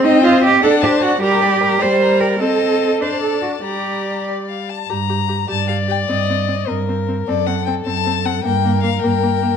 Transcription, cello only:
0, 0, Header, 1, 2, 480
1, 0, Start_track
1, 0, Key_signature, -2, "minor"
1, 0, Tempo, 393443
1, 52, Time_signature, 6, 3, 24, 8
1, 2932, Tempo, 411523
1, 6772, Tempo, 392670
1, 11506, End_track
2, 0, Start_track
2, 0, Title_t, "Cello"
2, 0, Program_c, 0, 42
2, 53, Note_on_c, 0, 63, 111
2, 284, Note_off_c, 0, 63, 0
2, 291, Note_on_c, 0, 65, 103
2, 526, Note_off_c, 0, 65, 0
2, 540, Note_on_c, 0, 67, 105
2, 765, Note_off_c, 0, 67, 0
2, 773, Note_on_c, 0, 69, 98
2, 867, Note_off_c, 0, 69, 0
2, 1014, Note_on_c, 0, 67, 90
2, 1108, Note_off_c, 0, 67, 0
2, 1250, Note_on_c, 0, 66, 83
2, 1483, Note_off_c, 0, 66, 0
2, 1492, Note_on_c, 0, 67, 104
2, 2212, Note_on_c, 0, 72, 94
2, 2230, Note_off_c, 0, 67, 0
2, 2688, Note_on_c, 0, 70, 77
2, 2707, Note_off_c, 0, 72, 0
2, 2926, Note_on_c, 0, 69, 83
2, 2944, Note_off_c, 0, 70, 0
2, 3649, Note_on_c, 0, 72, 70
2, 3666, Note_off_c, 0, 69, 0
2, 3878, Note_off_c, 0, 72, 0
2, 3885, Note_on_c, 0, 69, 60
2, 4114, Note_off_c, 0, 69, 0
2, 4121, Note_on_c, 0, 66, 50
2, 4214, Note_off_c, 0, 66, 0
2, 4371, Note_on_c, 0, 67, 54
2, 5097, Note_off_c, 0, 67, 0
2, 5832, Note_on_c, 0, 43, 52
2, 6454, Note_off_c, 0, 43, 0
2, 6532, Note_on_c, 0, 43, 52
2, 7165, Note_off_c, 0, 43, 0
2, 7251, Note_on_c, 0, 43, 51
2, 7891, Note_off_c, 0, 43, 0
2, 7979, Note_on_c, 0, 43, 44
2, 8616, Note_off_c, 0, 43, 0
2, 8692, Note_on_c, 0, 42, 57
2, 9327, Note_off_c, 0, 42, 0
2, 9410, Note_on_c, 0, 42, 52
2, 10046, Note_off_c, 0, 42, 0
2, 10125, Note_on_c, 0, 43, 67
2, 10763, Note_off_c, 0, 43, 0
2, 10846, Note_on_c, 0, 43, 55
2, 11484, Note_off_c, 0, 43, 0
2, 11506, End_track
0, 0, End_of_file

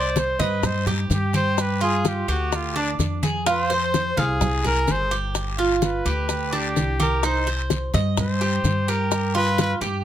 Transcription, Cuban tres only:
0, 0, Header, 1, 2, 480
1, 0, Start_track
1, 0, Key_signature, -3, "minor"
1, 0, Tempo, 470958
1, 1610, Time_signature, 4, 2, 24, 8
1, 10233, End_track
2, 0, Start_track
2, 0, Title_t, "Cuban tres"
2, 0, Program_c, 0, 25
2, 0, Note_on_c, 0, 72, 78
2, 391, Note_off_c, 0, 72, 0
2, 403, Note_on_c, 0, 75, 74
2, 872, Note_off_c, 0, 75, 0
2, 886, Note_on_c, 0, 67, 67
2, 1354, Note_off_c, 0, 67, 0
2, 1366, Note_on_c, 0, 67, 70
2, 1834, Note_off_c, 0, 67, 0
2, 1845, Note_on_c, 0, 65, 74
2, 2314, Note_off_c, 0, 65, 0
2, 2329, Note_on_c, 0, 67, 74
2, 2796, Note_off_c, 0, 67, 0
2, 2811, Note_on_c, 0, 62, 80
2, 3278, Note_off_c, 0, 62, 0
2, 3292, Note_on_c, 0, 68, 74
2, 3526, Note_off_c, 0, 68, 0
2, 3531, Note_on_c, 0, 65, 92
2, 3765, Note_off_c, 0, 65, 0
2, 3771, Note_on_c, 0, 72, 76
2, 4238, Note_off_c, 0, 72, 0
2, 4253, Note_on_c, 0, 77, 71
2, 4719, Note_off_c, 0, 77, 0
2, 4734, Note_on_c, 0, 68, 71
2, 5200, Note_off_c, 0, 68, 0
2, 5211, Note_on_c, 0, 67, 76
2, 5678, Note_off_c, 0, 67, 0
2, 5694, Note_on_c, 0, 65, 75
2, 6160, Note_off_c, 0, 65, 0
2, 6173, Note_on_c, 0, 67, 70
2, 6639, Note_off_c, 0, 67, 0
2, 6651, Note_on_c, 0, 62, 78
2, 7118, Note_off_c, 0, 62, 0
2, 7131, Note_on_c, 0, 67, 76
2, 7365, Note_off_c, 0, 67, 0
2, 7373, Note_on_c, 0, 63, 84
2, 7606, Note_off_c, 0, 63, 0
2, 7613, Note_on_c, 0, 72, 73
2, 8078, Note_off_c, 0, 72, 0
2, 8095, Note_on_c, 0, 75, 71
2, 8558, Note_off_c, 0, 75, 0
2, 8572, Note_on_c, 0, 67, 69
2, 9036, Note_off_c, 0, 67, 0
2, 9053, Note_on_c, 0, 67, 76
2, 9516, Note_off_c, 0, 67, 0
2, 9526, Note_on_c, 0, 65, 75
2, 9991, Note_off_c, 0, 65, 0
2, 10003, Note_on_c, 0, 67, 75
2, 10233, Note_off_c, 0, 67, 0
2, 10233, End_track
0, 0, End_of_file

